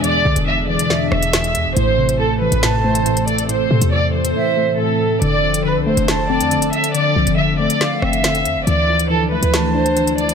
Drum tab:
HH |x--x---x---xxxx-|x--x---x---xxxxx|x--x---x--------|x--x---x---xxxxx|
SD |--------o-r-o---|--------o-------|----------------|--------o-------|

HH |x--x---x---xxxx-|x--x---x---xxxxx|
SD |--------o-r-o---|--------o-------|